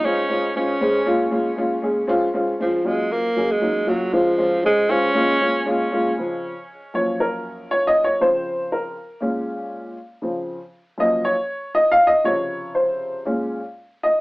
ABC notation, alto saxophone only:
X:1
M:4/4
L:1/16
Q:1/4=118
K:Db
V:1 name="Alto saxophone" clef=bass
D4 D8 z4 | z4 F,2 A,2 B,3 A,3 G,2 | F,4 A,2 D8 z2 | z16 |
z16 | z16 | z16 |]